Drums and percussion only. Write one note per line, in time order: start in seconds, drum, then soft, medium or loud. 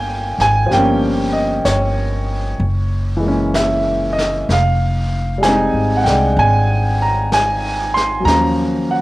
0.40 snare soft
0.71 brush sweep soft
0.71 snare soft
1.65 brush sweep soft
1.65 snare soft
1.65 hi-hat pedal medium
2.60 brush sweep soft
3.54 brush sweep soft
3.54 snare soft
3.54 hi-hat pedal soft
4.19 snare soft
4.50 brush sweep soft
4.50 snare soft
5.43 brush sweep soft
5.43 snare soft
5.43 hi-hat pedal soft
6.06 snare soft
6.38 brush sweep soft
7.32 brush sweep soft
7.32 snare soft
7.32 hi-hat pedal soft
7.96 snare soft
8.27 brush sweep soft
8.27 snare soft